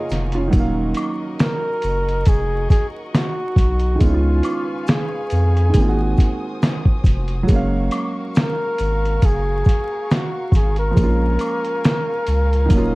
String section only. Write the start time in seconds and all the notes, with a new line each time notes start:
Already playing: A#4 F5 G#5 C#6
0.53 F#4 A#4 D#5 C#6
4.01 B4 F5 G#5
5.75 F#4 C5 D#6
7.50 A#4 F5 C#6
10.96 F5 G#5
12.70 C#5 D#5 D#6